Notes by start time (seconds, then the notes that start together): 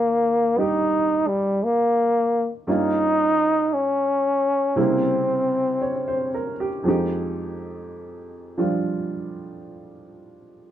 Already playing: D#2 D#3 A#3 F4 G4 D5
0.56 G3 D#4 G4
1.28 G3
1.64 A#3
2.67 G2 G3 A#3 C#4 D#4 F4
3.74 C#4
4.76 C3 C#3 G3 A#3 C4 E4
5.82 C#5
6.08 C5
6.34 A#4
6.60 G4
6.84 F2 F3 G#3
6.88 D#4 G4
8.58 F3 G3 D4 F4